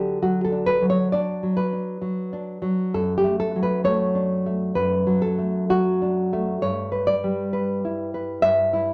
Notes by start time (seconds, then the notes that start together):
Already playing: D3 F#3 D4 G4
0.22 F#3 F#4
0.45 A4
0.52 D4
0.66 B4
0.81 F#3
0.90 C#5
1.12 D4 D5
1.43 F#3
1.57 B4
1.73 D4
2.02 F#3
2.33 D4
2.62 F#3
2.94 F#2 A4
3.18 G4
3.24 A3
3.40 A4
3.56 F#3
3.63 B4
3.84 A3 C#5
4.15 D4
4.46 A3
4.75 F#2 B4
5.07 F#3
5.22 A4
5.38 A3
5.70 F#3 F#4
6.02 D4
6.33 A3
6.62 G2 C#5
6.92 B4
7.07 D5
7.24 G3
7.53 B4
7.85 E4
8.14 B4
8.42 G2 E5
8.73 E4